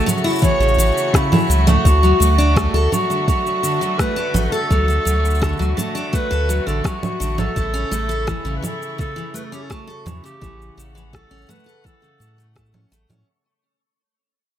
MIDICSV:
0, 0, Header, 1, 7, 480
1, 0, Start_track
1, 0, Tempo, 714286
1, 1243, Time_signature, 4, 2, 24, 8
1, 9800, End_track
2, 0, Start_track
2, 0, Title_t, "Synth texture"
2, 0, Program_c, 0, 99
2, 0, Note_on_c, 0, 85, 91
2, 8933, Note_off_c, 0, 85, 0
2, 9800, End_track
3, 0, Start_track
3, 0, Title_t, "Clarinet"
3, 0, Program_c, 1, 71
3, 0, Note_on_c, 1, 69, 109
3, 101, Note_off_c, 1, 69, 0
3, 286, Note_on_c, 1, 73, 114
3, 771, Note_on_c, 1, 64, 91
3, 781, Note_off_c, 1, 73, 0
3, 1123, Note_off_c, 1, 64, 0
3, 1127, Note_on_c, 1, 66, 97
3, 1938, Note_off_c, 1, 66, 0
3, 1965, Note_on_c, 1, 66, 89
3, 2188, Note_off_c, 1, 66, 0
3, 2203, Note_on_c, 1, 66, 98
3, 2680, Note_on_c, 1, 71, 100
3, 2690, Note_off_c, 1, 66, 0
3, 2988, Note_off_c, 1, 71, 0
3, 2992, Note_on_c, 1, 71, 65
3, 3041, Note_on_c, 1, 69, 105
3, 3051, Note_off_c, 1, 71, 0
3, 3941, Note_off_c, 1, 69, 0
3, 4124, Note_on_c, 1, 71, 98
3, 4482, Note_on_c, 1, 69, 88
3, 4492, Note_off_c, 1, 71, 0
3, 4605, Note_on_c, 1, 66, 94
3, 4615, Note_off_c, 1, 69, 0
3, 4962, Note_off_c, 1, 66, 0
3, 4966, Note_on_c, 1, 69, 103
3, 5731, Note_off_c, 1, 69, 0
3, 5759, Note_on_c, 1, 71, 59
3, 5811, Note_on_c, 1, 69, 88
3, 5821, Note_off_c, 1, 71, 0
3, 6044, Note_off_c, 1, 69, 0
3, 6048, Note_on_c, 1, 69, 103
3, 6282, Note_on_c, 1, 71, 83
3, 6293, Note_off_c, 1, 69, 0
3, 6347, Note_on_c, 1, 69, 76
3, 6357, Note_off_c, 1, 71, 0
3, 6405, Note_on_c, 1, 67, 84
3, 6415, Note_off_c, 1, 69, 0
3, 6469, Note_on_c, 1, 69, 77
3, 6479, Note_off_c, 1, 67, 0
3, 6524, Note_on_c, 1, 66, 90
3, 6534, Note_off_c, 1, 69, 0
3, 6883, Note_off_c, 1, 66, 0
3, 6889, Note_on_c, 1, 67, 94
3, 7278, Note_off_c, 1, 67, 0
3, 7486, Note_on_c, 1, 69, 99
3, 7727, Note_on_c, 1, 71, 90
3, 7737, Note_off_c, 1, 69, 0
3, 7966, Note_on_c, 1, 69, 96
3, 7977, Note_off_c, 1, 71, 0
3, 8445, Note_off_c, 1, 69, 0
3, 9800, End_track
4, 0, Start_track
4, 0, Title_t, "String quartet"
4, 0, Program_c, 2, 48
4, 0, Note_on_c, 2, 49, 78
4, 0, Note_on_c, 2, 57, 76
4, 0, Note_on_c, 2, 66, 91
4, 1216, Note_off_c, 2, 49, 0
4, 1238, Note_on_c, 2, 50, 82
4, 5054, Note_off_c, 2, 50, 0
4, 5058, Note_off_c, 2, 66, 0
4, 5083, Note_on_c, 2, 64, 89
4, 5086, Note_on_c, 2, 49, 80
4, 6984, Note_off_c, 2, 64, 0
4, 7007, Note_on_c, 2, 78, 85
4, 8896, Note_off_c, 2, 57, 0
4, 8898, Note_off_c, 2, 49, 0
4, 8906, Note_off_c, 2, 78, 0
4, 9800, End_track
5, 0, Start_track
5, 0, Title_t, "Steel-string acoustic guitar"
5, 0, Program_c, 3, 25
5, 43, Note_on_c, 3, 54, 95
5, 157, Note_off_c, 3, 54, 0
5, 163, Note_on_c, 3, 64, 108
5, 277, Note_off_c, 3, 64, 0
5, 281, Note_on_c, 3, 52, 71
5, 390, Note_off_c, 3, 52, 0
5, 405, Note_on_c, 3, 49, 79
5, 512, Note_off_c, 3, 49, 0
5, 527, Note_on_c, 3, 52, 75
5, 753, Note_off_c, 3, 52, 0
5, 766, Note_on_c, 3, 49, 84
5, 872, Note_off_c, 3, 49, 0
5, 886, Note_on_c, 3, 52, 72
5, 993, Note_off_c, 3, 52, 0
5, 1006, Note_on_c, 3, 54, 73
5, 1113, Note_off_c, 3, 54, 0
5, 1122, Note_on_c, 3, 57, 101
5, 1237, Note_off_c, 3, 57, 0
5, 1244, Note_on_c, 3, 50, 82
5, 1352, Note_off_c, 3, 50, 0
5, 1364, Note_on_c, 3, 54, 79
5, 1472, Note_off_c, 3, 54, 0
5, 1478, Note_on_c, 3, 57, 69
5, 1589, Note_off_c, 3, 57, 0
5, 1602, Note_on_c, 3, 62, 99
5, 1716, Note_off_c, 3, 62, 0
5, 1723, Note_on_c, 3, 57, 101
5, 1837, Note_off_c, 3, 57, 0
5, 1842, Note_on_c, 3, 69, 107
5, 1957, Note_off_c, 3, 69, 0
5, 1963, Note_on_c, 3, 54, 77
5, 2071, Note_off_c, 3, 54, 0
5, 2083, Note_on_c, 3, 50, 75
5, 2191, Note_off_c, 3, 50, 0
5, 2205, Note_on_c, 3, 54, 73
5, 2432, Note_off_c, 3, 54, 0
5, 2441, Note_on_c, 3, 50, 73
5, 2550, Note_off_c, 3, 50, 0
5, 2562, Note_on_c, 3, 54, 78
5, 2671, Note_off_c, 3, 54, 0
5, 2683, Note_on_c, 3, 57, 81
5, 2791, Note_off_c, 3, 57, 0
5, 2797, Note_on_c, 3, 62, 103
5, 2914, Note_off_c, 3, 62, 0
5, 2917, Note_on_c, 3, 57, 102
5, 3034, Note_off_c, 3, 57, 0
5, 3038, Note_on_c, 3, 69, 100
5, 3155, Note_off_c, 3, 69, 0
5, 3162, Note_on_c, 3, 54, 81
5, 3270, Note_off_c, 3, 54, 0
5, 3280, Note_on_c, 3, 50, 81
5, 3390, Note_off_c, 3, 50, 0
5, 3395, Note_on_c, 3, 54, 79
5, 3627, Note_off_c, 3, 54, 0
5, 3639, Note_on_c, 3, 50, 87
5, 3749, Note_off_c, 3, 50, 0
5, 3758, Note_on_c, 3, 54, 84
5, 3869, Note_off_c, 3, 54, 0
5, 3877, Note_on_c, 3, 57, 77
5, 3988, Note_off_c, 3, 57, 0
5, 3998, Note_on_c, 3, 62, 99
5, 4114, Note_off_c, 3, 62, 0
5, 4118, Note_on_c, 3, 57, 90
5, 4235, Note_off_c, 3, 57, 0
5, 4238, Note_on_c, 3, 69, 104
5, 4355, Note_off_c, 3, 69, 0
5, 4361, Note_on_c, 3, 54, 78
5, 4470, Note_off_c, 3, 54, 0
5, 4480, Note_on_c, 3, 50, 77
5, 4589, Note_off_c, 3, 50, 0
5, 4598, Note_on_c, 3, 54, 77
5, 4829, Note_off_c, 3, 54, 0
5, 4838, Note_on_c, 3, 50, 73
5, 4949, Note_off_c, 3, 50, 0
5, 4959, Note_on_c, 3, 54, 70
5, 5069, Note_off_c, 3, 54, 0
5, 5081, Note_on_c, 3, 57, 78
5, 5190, Note_off_c, 3, 57, 0
5, 5199, Note_on_c, 3, 61, 110
5, 5315, Note_off_c, 3, 61, 0
5, 5318, Note_on_c, 3, 57, 101
5, 5435, Note_off_c, 3, 57, 0
5, 5436, Note_on_c, 3, 69, 104
5, 5554, Note_off_c, 3, 69, 0
5, 5558, Note_on_c, 3, 52, 84
5, 5669, Note_off_c, 3, 52, 0
5, 5677, Note_on_c, 3, 49, 85
5, 5788, Note_off_c, 3, 49, 0
5, 5796, Note_on_c, 3, 52, 75
5, 6028, Note_off_c, 3, 52, 0
5, 6036, Note_on_c, 3, 49, 74
5, 6148, Note_off_c, 3, 49, 0
5, 6156, Note_on_c, 3, 52, 84
5, 6268, Note_off_c, 3, 52, 0
5, 6276, Note_on_c, 3, 57, 78
5, 6388, Note_off_c, 3, 57, 0
5, 6399, Note_on_c, 3, 61, 104
5, 6515, Note_off_c, 3, 61, 0
5, 6517, Note_on_c, 3, 57, 98
5, 6634, Note_off_c, 3, 57, 0
5, 6636, Note_on_c, 3, 69, 97
5, 6753, Note_off_c, 3, 69, 0
5, 6759, Note_on_c, 3, 52, 83
5, 6869, Note_off_c, 3, 52, 0
5, 6879, Note_on_c, 3, 49, 82
5, 6989, Note_off_c, 3, 49, 0
5, 6998, Note_on_c, 3, 52, 84
5, 7229, Note_off_c, 3, 52, 0
5, 7241, Note_on_c, 3, 49, 73
5, 7350, Note_off_c, 3, 49, 0
5, 7359, Note_on_c, 3, 52, 80
5, 7469, Note_off_c, 3, 52, 0
5, 7480, Note_on_c, 3, 57, 87
5, 7590, Note_off_c, 3, 57, 0
5, 7599, Note_on_c, 3, 61, 110
5, 7715, Note_off_c, 3, 61, 0
5, 7719, Note_on_c, 3, 57, 102
5, 7835, Note_off_c, 3, 57, 0
5, 7836, Note_on_c, 3, 69, 97
5, 7954, Note_off_c, 3, 69, 0
5, 7956, Note_on_c, 3, 52, 75
5, 8068, Note_off_c, 3, 52, 0
5, 8078, Note_on_c, 3, 49, 79
5, 8189, Note_off_c, 3, 49, 0
5, 8198, Note_on_c, 3, 57, 77
5, 8309, Note_off_c, 3, 57, 0
5, 8320, Note_on_c, 3, 57, 75
5, 8430, Note_off_c, 3, 57, 0
5, 8437, Note_on_c, 3, 57, 97
5, 8548, Note_off_c, 3, 57, 0
5, 8559, Note_on_c, 3, 61, 75
5, 8669, Note_off_c, 3, 61, 0
5, 8681, Note_on_c, 3, 57, 109
5, 8790, Note_off_c, 3, 57, 0
5, 8801, Note_on_c, 3, 61, 99
5, 8916, Note_off_c, 3, 61, 0
5, 9800, End_track
6, 0, Start_track
6, 0, Title_t, "Sub bass"
6, 0, Program_c, 4, 38
6, 401, Note_on_c, 4, 33, 96
6, 516, Note_off_c, 4, 33, 0
6, 520, Note_on_c, 4, 33, 102
6, 617, Note_off_c, 4, 33, 0
6, 1004, Note_on_c, 4, 37, 83
6, 1195, Note_off_c, 4, 37, 0
6, 1244, Note_on_c, 4, 38, 105
6, 1435, Note_off_c, 4, 38, 0
6, 1480, Note_on_c, 4, 38, 92
6, 1802, Note_off_c, 4, 38, 0
6, 1838, Note_on_c, 4, 38, 92
6, 1936, Note_off_c, 4, 38, 0
6, 2918, Note_on_c, 4, 33, 105
6, 3016, Note_off_c, 4, 33, 0
6, 3163, Note_on_c, 4, 38, 95
6, 3354, Note_off_c, 4, 38, 0
6, 3401, Note_on_c, 4, 38, 93
6, 3723, Note_off_c, 4, 38, 0
6, 3763, Note_on_c, 4, 38, 96
6, 3859, Note_off_c, 4, 38, 0
6, 4246, Note_on_c, 4, 38, 97
6, 4436, Note_off_c, 4, 38, 0
6, 4485, Note_on_c, 4, 33, 85
6, 4580, Note_off_c, 4, 33, 0
6, 4843, Note_on_c, 4, 33, 102
6, 5034, Note_off_c, 4, 33, 0
6, 5083, Note_on_c, 4, 33, 100
6, 5274, Note_off_c, 4, 33, 0
6, 5318, Note_on_c, 4, 33, 93
6, 5642, Note_off_c, 4, 33, 0
6, 5677, Note_on_c, 4, 33, 86
6, 5776, Note_off_c, 4, 33, 0
6, 6760, Note_on_c, 4, 40, 105
6, 6857, Note_off_c, 4, 40, 0
6, 7002, Note_on_c, 4, 33, 98
6, 7194, Note_off_c, 4, 33, 0
6, 7240, Note_on_c, 4, 33, 98
6, 7563, Note_off_c, 4, 33, 0
6, 7601, Note_on_c, 4, 33, 86
6, 7698, Note_off_c, 4, 33, 0
6, 8198, Note_on_c, 4, 45, 94
6, 8642, Note_off_c, 4, 45, 0
6, 8679, Note_on_c, 4, 33, 95
6, 8777, Note_off_c, 4, 33, 0
6, 8798, Note_on_c, 4, 45, 82
6, 8896, Note_off_c, 4, 45, 0
6, 9800, End_track
7, 0, Start_track
7, 0, Title_t, "Drums"
7, 53, Note_on_c, 9, 64, 56
7, 59, Note_on_c, 9, 69, 82
7, 118, Note_off_c, 9, 69, 0
7, 118, Note_on_c, 9, 69, 19
7, 120, Note_off_c, 9, 64, 0
7, 179, Note_off_c, 9, 69, 0
7, 179, Note_on_c, 9, 69, 17
7, 200, Note_off_c, 9, 69, 0
7, 200, Note_on_c, 9, 69, 18
7, 220, Note_off_c, 9, 69, 0
7, 220, Note_on_c, 9, 69, 22
7, 239, Note_off_c, 9, 69, 0
7, 239, Note_on_c, 9, 69, 27
7, 258, Note_off_c, 9, 69, 0
7, 258, Note_on_c, 9, 69, 27
7, 278, Note_off_c, 9, 69, 0
7, 278, Note_on_c, 9, 69, 31
7, 286, Note_on_c, 9, 36, 104
7, 295, Note_off_c, 9, 69, 0
7, 295, Note_on_c, 9, 69, 45
7, 353, Note_off_c, 9, 36, 0
7, 362, Note_off_c, 9, 69, 0
7, 417, Note_on_c, 9, 69, 21
7, 459, Note_off_c, 9, 69, 0
7, 459, Note_on_c, 9, 69, 18
7, 499, Note_off_c, 9, 69, 0
7, 499, Note_on_c, 9, 69, 14
7, 535, Note_off_c, 9, 69, 0
7, 535, Note_on_c, 9, 69, 83
7, 602, Note_off_c, 9, 69, 0
7, 617, Note_on_c, 9, 69, 8
7, 656, Note_off_c, 9, 69, 0
7, 656, Note_on_c, 9, 69, 36
7, 723, Note_off_c, 9, 69, 0
7, 765, Note_on_c, 9, 36, 111
7, 772, Note_on_c, 9, 37, 95
7, 777, Note_on_c, 9, 69, 50
7, 833, Note_off_c, 9, 36, 0
7, 839, Note_off_c, 9, 37, 0
7, 844, Note_off_c, 9, 69, 0
7, 892, Note_on_c, 9, 64, 79
7, 898, Note_on_c, 9, 69, 23
7, 913, Note_off_c, 9, 69, 0
7, 913, Note_on_c, 9, 69, 19
7, 928, Note_off_c, 9, 69, 0
7, 928, Note_on_c, 9, 69, 16
7, 939, Note_off_c, 9, 69, 0
7, 939, Note_on_c, 9, 69, 12
7, 955, Note_off_c, 9, 69, 0
7, 955, Note_on_c, 9, 69, 9
7, 959, Note_off_c, 9, 64, 0
7, 969, Note_off_c, 9, 69, 0
7, 969, Note_on_c, 9, 69, 8
7, 984, Note_off_c, 9, 69, 0
7, 984, Note_on_c, 9, 69, 7
7, 998, Note_off_c, 9, 69, 0
7, 998, Note_on_c, 9, 69, 5
7, 1013, Note_off_c, 9, 69, 0
7, 1013, Note_on_c, 9, 69, 80
7, 1080, Note_off_c, 9, 69, 0
7, 1127, Note_on_c, 9, 64, 76
7, 1132, Note_on_c, 9, 69, 33
7, 1194, Note_off_c, 9, 64, 0
7, 1199, Note_off_c, 9, 69, 0
7, 1244, Note_on_c, 9, 36, 100
7, 1253, Note_on_c, 9, 69, 46
7, 1311, Note_off_c, 9, 36, 0
7, 1320, Note_off_c, 9, 69, 0
7, 1371, Note_on_c, 9, 69, 21
7, 1439, Note_off_c, 9, 69, 0
7, 1491, Note_on_c, 9, 69, 77
7, 1559, Note_off_c, 9, 69, 0
7, 1610, Note_on_c, 9, 69, 35
7, 1678, Note_off_c, 9, 69, 0
7, 1724, Note_on_c, 9, 36, 108
7, 1729, Note_on_c, 9, 37, 102
7, 1734, Note_on_c, 9, 69, 45
7, 1791, Note_off_c, 9, 36, 0
7, 1796, Note_off_c, 9, 37, 0
7, 1801, Note_off_c, 9, 69, 0
7, 1853, Note_on_c, 9, 69, 22
7, 1920, Note_off_c, 9, 69, 0
7, 1966, Note_on_c, 9, 64, 59
7, 1972, Note_on_c, 9, 69, 82
7, 2033, Note_off_c, 9, 64, 0
7, 2039, Note_off_c, 9, 69, 0
7, 2090, Note_on_c, 9, 69, 35
7, 2157, Note_off_c, 9, 69, 0
7, 2204, Note_on_c, 9, 36, 104
7, 2212, Note_on_c, 9, 69, 42
7, 2271, Note_off_c, 9, 36, 0
7, 2279, Note_off_c, 9, 69, 0
7, 2329, Note_on_c, 9, 69, 23
7, 2396, Note_off_c, 9, 69, 0
7, 2446, Note_on_c, 9, 69, 82
7, 2514, Note_off_c, 9, 69, 0
7, 2569, Note_on_c, 9, 69, 32
7, 2636, Note_off_c, 9, 69, 0
7, 2684, Note_on_c, 9, 36, 105
7, 2684, Note_on_c, 9, 37, 106
7, 2689, Note_on_c, 9, 69, 46
7, 2751, Note_off_c, 9, 36, 0
7, 2751, Note_off_c, 9, 37, 0
7, 2756, Note_off_c, 9, 69, 0
7, 2807, Note_on_c, 9, 69, 22
7, 2875, Note_off_c, 9, 69, 0
7, 2922, Note_on_c, 9, 64, 79
7, 2927, Note_on_c, 9, 69, 81
7, 2989, Note_off_c, 9, 64, 0
7, 2995, Note_off_c, 9, 69, 0
7, 3047, Note_on_c, 9, 69, 32
7, 3114, Note_off_c, 9, 69, 0
7, 3163, Note_on_c, 9, 36, 103
7, 3169, Note_on_c, 9, 69, 39
7, 3231, Note_off_c, 9, 36, 0
7, 3236, Note_off_c, 9, 69, 0
7, 3290, Note_on_c, 9, 69, 22
7, 3357, Note_off_c, 9, 69, 0
7, 3407, Note_on_c, 9, 69, 81
7, 3474, Note_off_c, 9, 69, 0
7, 3529, Note_on_c, 9, 69, 31
7, 3564, Note_off_c, 9, 69, 0
7, 3564, Note_on_c, 9, 69, 25
7, 3593, Note_off_c, 9, 69, 0
7, 3593, Note_on_c, 9, 69, 20
7, 3621, Note_off_c, 9, 69, 0
7, 3621, Note_on_c, 9, 69, 18
7, 3643, Note_on_c, 9, 36, 100
7, 3647, Note_on_c, 9, 37, 95
7, 3653, Note_off_c, 9, 69, 0
7, 3653, Note_on_c, 9, 69, 43
7, 3710, Note_off_c, 9, 36, 0
7, 3714, Note_off_c, 9, 37, 0
7, 3714, Note_off_c, 9, 69, 0
7, 3714, Note_on_c, 9, 69, 9
7, 3744, Note_off_c, 9, 69, 0
7, 3744, Note_on_c, 9, 69, 7
7, 3773, Note_off_c, 9, 69, 0
7, 3773, Note_on_c, 9, 69, 20
7, 3840, Note_off_c, 9, 69, 0
7, 3885, Note_on_c, 9, 64, 60
7, 3890, Note_on_c, 9, 69, 80
7, 3952, Note_off_c, 9, 64, 0
7, 3957, Note_off_c, 9, 69, 0
7, 4010, Note_on_c, 9, 69, 34
7, 4077, Note_off_c, 9, 69, 0
7, 4123, Note_on_c, 9, 36, 105
7, 4132, Note_on_c, 9, 69, 44
7, 4190, Note_off_c, 9, 36, 0
7, 4200, Note_off_c, 9, 69, 0
7, 4250, Note_on_c, 9, 69, 22
7, 4317, Note_off_c, 9, 69, 0
7, 4367, Note_on_c, 9, 69, 77
7, 4434, Note_off_c, 9, 69, 0
7, 4490, Note_on_c, 9, 69, 33
7, 4557, Note_off_c, 9, 69, 0
7, 4603, Note_on_c, 9, 36, 111
7, 4606, Note_on_c, 9, 37, 94
7, 4611, Note_on_c, 9, 69, 43
7, 4670, Note_off_c, 9, 36, 0
7, 4673, Note_off_c, 9, 37, 0
7, 4678, Note_off_c, 9, 69, 0
7, 4725, Note_on_c, 9, 64, 79
7, 4730, Note_on_c, 9, 69, 22
7, 4792, Note_off_c, 9, 64, 0
7, 4797, Note_off_c, 9, 69, 0
7, 4848, Note_on_c, 9, 69, 73
7, 4915, Note_off_c, 9, 69, 0
7, 4962, Note_on_c, 9, 64, 84
7, 4967, Note_on_c, 9, 69, 34
7, 5029, Note_off_c, 9, 64, 0
7, 5034, Note_off_c, 9, 69, 0
7, 5083, Note_on_c, 9, 36, 98
7, 5088, Note_on_c, 9, 69, 43
7, 5151, Note_off_c, 9, 36, 0
7, 5155, Note_off_c, 9, 69, 0
7, 5208, Note_on_c, 9, 69, 20
7, 5275, Note_off_c, 9, 69, 0
7, 5325, Note_on_c, 9, 69, 78
7, 5393, Note_off_c, 9, 69, 0
7, 5448, Note_on_c, 9, 69, 35
7, 5515, Note_off_c, 9, 69, 0
7, 5562, Note_on_c, 9, 37, 107
7, 5564, Note_on_c, 9, 36, 105
7, 5568, Note_on_c, 9, 69, 45
7, 5629, Note_off_c, 9, 37, 0
7, 5631, Note_off_c, 9, 36, 0
7, 5635, Note_off_c, 9, 69, 0
7, 5686, Note_on_c, 9, 69, 22
7, 5753, Note_off_c, 9, 69, 0
7, 5803, Note_on_c, 9, 64, 64
7, 5808, Note_on_c, 9, 69, 75
7, 5870, Note_off_c, 9, 64, 0
7, 5875, Note_off_c, 9, 69, 0
7, 5930, Note_on_c, 9, 69, 34
7, 5997, Note_off_c, 9, 69, 0
7, 6043, Note_on_c, 9, 36, 109
7, 6051, Note_on_c, 9, 69, 37
7, 6110, Note_off_c, 9, 36, 0
7, 6118, Note_off_c, 9, 69, 0
7, 6167, Note_on_c, 9, 69, 22
7, 6235, Note_off_c, 9, 69, 0
7, 6286, Note_on_c, 9, 69, 80
7, 6354, Note_off_c, 9, 69, 0
7, 6406, Note_on_c, 9, 69, 32
7, 6474, Note_off_c, 9, 69, 0
7, 6523, Note_on_c, 9, 36, 110
7, 6523, Note_on_c, 9, 37, 98
7, 6529, Note_on_c, 9, 69, 43
7, 6590, Note_off_c, 9, 36, 0
7, 6590, Note_off_c, 9, 37, 0
7, 6596, Note_off_c, 9, 69, 0
7, 6650, Note_on_c, 9, 69, 20
7, 6717, Note_off_c, 9, 69, 0
7, 6764, Note_on_c, 9, 64, 88
7, 6769, Note_on_c, 9, 69, 69
7, 6831, Note_off_c, 9, 64, 0
7, 6837, Note_off_c, 9, 69, 0
7, 6891, Note_on_c, 9, 69, 33
7, 6958, Note_off_c, 9, 69, 0
7, 7003, Note_on_c, 9, 36, 102
7, 7012, Note_on_c, 9, 69, 40
7, 7070, Note_off_c, 9, 36, 0
7, 7080, Note_off_c, 9, 69, 0
7, 7135, Note_on_c, 9, 69, 22
7, 7202, Note_off_c, 9, 69, 0
7, 7254, Note_on_c, 9, 69, 75
7, 7321, Note_off_c, 9, 69, 0
7, 7374, Note_on_c, 9, 69, 33
7, 7441, Note_off_c, 9, 69, 0
7, 7483, Note_on_c, 9, 36, 106
7, 7491, Note_on_c, 9, 37, 106
7, 7496, Note_on_c, 9, 69, 42
7, 7550, Note_off_c, 9, 36, 0
7, 7558, Note_off_c, 9, 37, 0
7, 7563, Note_off_c, 9, 69, 0
7, 7615, Note_on_c, 9, 69, 10
7, 7645, Note_off_c, 9, 69, 0
7, 7645, Note_on_c, 9, 69, 12
7, 7671, Note_off_c, 9, 69, 0
7, 7671, Note_on_c, 9, 69, 12
7, 7702, Note_off_c, 9, 69, 0
7, 7702, Note_on_c, 9, 69, 14
7, 7725, Note_on_c, 9, 64, 60
7, 7730, Note_off_c, 9, 69, 0
7, 7730, Note_on_c, 9, 69, 75
7, 7792, Note_off_c, 9, 64, 0
7, 7792, Note_off_c, 9, 69, 0
7, 7792, Note_on_c, 9, 69, 17
7, 7821, Note_off_c, 9, 69, 0
7, 7821, Note_on_c, 9, 69, 18
7, 7853, Note_off_c, 9, 69, 0
7, 7853, Note_on_c, 9, 69, 34
7, 7920, Note_off_c, 9, 69, 0
7, 7963, Note_on_c, 9, 36, 106
7, 7973, Note_on_c, 9, 69, 42
7, 8030, Note_off_c, 9, 36, 0
7, 8040, Note_off_c, 9, 69, 0
7, 8090, Note_on_c, 9, 69, 22
7, 8157, Note_off_c, 9, 69, 0
7, 8207, Note_on_c, 9, 69, 85
7, 8274, Note_off_c, 9, 69, 0
7, 8331, Note_on_c, 9, 69, 32
7, 8398, Note_off_c, 9, 69, 0
7, 8443, Note_on_c, 9, 36, 101
7, 8443, Note_on_c, 9, 37, 107
7, 8448, Note_on_c, 9, 69, 43
7, 8508, Note_off_c, 9, 69, 0
7, 8508, Note_on_c, 9, 69, 20
7, 8510, Note_off_c, 9, 36, 0
7, 8510, Note_off_c, 9, 37, 0
7, 8562, Note_on_c, 9, 64, 83
7, 8576, Note_off_c, 9, 69, 0
7, 8629, Note_off_c, 9, 64, 0
7, 8689, Note_on_c, 9, 69, 73
7, 8756, Note_off_c, 9, 69, 0
7, 8806, Note_on_c, 9, 64, 88
7, 8812, Note_on_c, 9, 69, 33
7, 8873, Note_off_c, 9, 64, 0
7, 8879, Note_off_c, 9, 69, 0
7, 9800, End_track
0, 0, End_of_file